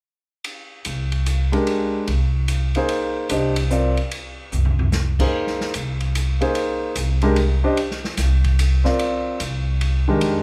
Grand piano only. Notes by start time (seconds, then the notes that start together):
1.52 G#3 D4 G4 A#4
2.76 A#3 D#4 G#4 C5
3.30 D4 G4 C5 D#5
3.70 C4 F4 A#4 D5
5.20 A#3 D#4 G#4 C5
6.41 A#3 D#4 G#4 C5
7.23 G#3 D4 G4 A#4
7.64 D4 G4 C5 D#5
8.84 C4 F4 A#4 D5
10.08 D#3 G#3 D4 G4 A#4